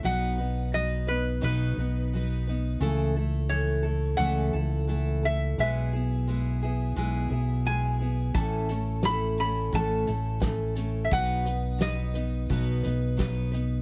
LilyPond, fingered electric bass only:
\new Staff \with { instrumentName = "Fingered electric bass" } { \clef bass \time 4/4 \key b \mixolydian \tempo 4 = 87 b,,2 b,,8 b,,4. | cis,2 cis,8 cis,4. | b,,2 b,,8 b,,4. | a,,2 a,,8 a,,4. |
b,,2 b,,8 b,,4. | }